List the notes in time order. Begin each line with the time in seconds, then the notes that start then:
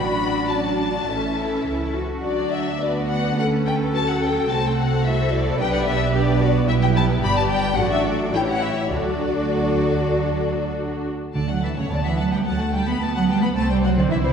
Already playing: A1 F#3 D4 F#4 D5 B5
0.49 C#4 A5
0.79 D4
1.07 A1 E3 C#4 A4 E5
1.37 E4
1.66 C#2 E4
1.95 F#4
2.24 D2 F#3 D4 F#4 D5
2.52 E5
2.81 B3 D4 F#4 B4 D5
3.09 F#5
3.37 A3 C#4 A4 F#5
3.66 G5
3.94 F#3 A4 A5
4.09 F#5
4.22 G5
4.49 C2 A3 C4 F#4 A4 A5
4.66 G5
4.79 F#5
5.05 A3 E4 A4 C5 E5
5.33 D5
5.58 B1 B3 D4 G4 B4 D5 G5
5.74 F#5
5.87 E5
6.13 B3 D4 G4 B4 D5
6.40 F#4
6.67 B1 G3 B3 E4 G4 B4 E5
6.83 G5
6.96 A5
7.22 G1 G3 G4 D5 B5
7.37 A5
7.50 G5
7.77 A1 F#3 D4 F#4 A4 D5 F#5
7.92 E5
8.06 D5
8.34 A1 E3 E4 G4 C#5 G5
8.50 F#5
8.64 E5
8.94 D2 F#3 D4 F#4 A4 D5
11.34 D2 D3 A3 D5 A5
11.48 F#3 F#5
11.62 E3 E5 A5
11.76 C#3 C#5 F#5
11.90 D2 D3 B3 D5 A5
12.04 E3 E5 F#5
12.17 F#3 F#5 A5
12.31 G3 F#5 G5
12.45 D2 F#3 A3 F#5 A5
12.60 A3 F#5 A5
12.73 G3 G5 A5
12.87 B3 F#5 B5
13.01 D2 A3 B3 A5
13.15 F#3 F#5
13.28 G3 G5 A5
13.42 B3 F#5 B5
13.56 C2 A3 C4 C5 A5
13.70 G3 D5 G5
13.83 F#3 C5 F#5
13.97 D3 D5
14.10 C2 E3 E4 C5 E5
14.24 C3 C5 D5